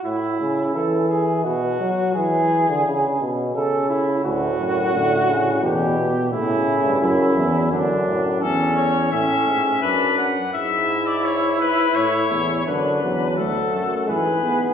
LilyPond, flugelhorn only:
\new Staff \with { instrumentName = "Flugelhorn" } { \time 3/4 \key d \major \tempo 4 = 86 e'4 a'8 gis'8 fis'4 | gis'4. r8 a'8 e'8 | fis'2 g'4 | e'4 e'4 d'4 |
cis'4 cis'4 d'8 r8 | e'2. | d'4 fis'4 gis'4 | }